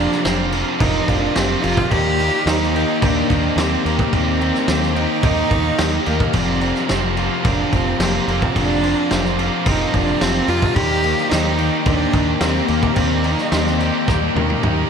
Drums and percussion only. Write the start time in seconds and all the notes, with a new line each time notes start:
0.12 snare
0.25 snare, crash
0.52 crash
0.80 kick, crash
1.08 kick, crash
1.36 snare, crash
1.64 crash
1.77 kick
1.91 kick, crash
2.20 crash
2.47 snare, crash
2.62 snare
2.76 crash
3.02 kick, crash
3.30 kick, crash
3.58 snare, crash
3.86 crash
3.99 kick
4.13 kick, crash
4.41 crash
4.55 snare
4.68 snare, crash
4.83 snare
4.96 crash
5.23 kick, crash
5.51 kick, crash
5.79 snare, crash
6.06 crash
6.20 kick
6.33 kick, crash
6.61 crash
6.75 snare
6.89 snare, crash
7.17 crash
7.45 kick, crash
7.73 kick, crash
8.00 snare, crash
8.28 crash
8.42 kick
8.56 kick, crash
8.84 crash
9.11 snare, crash
9.25 snare
9.39 crash
9.66 kick, crash
9.94 kick, crash
10.21 snare, crash
10.48 crash
10.62 kick
10.76 kick, crash
11.04 crash
11.18 snare
11.31 snare, crash
11.58 crash
11.86 kick, crash
12.13 kick, crash
12.41 snare, crash
12.68 crash
12.83 kick
12.96 kick, crash
13.24 crash
13.38 snare
13.52 snare, crash
13.67 snare
13.80 crash
14.08 kick, snare
14.36 high tom
14.50 high tom
14.63 mid tom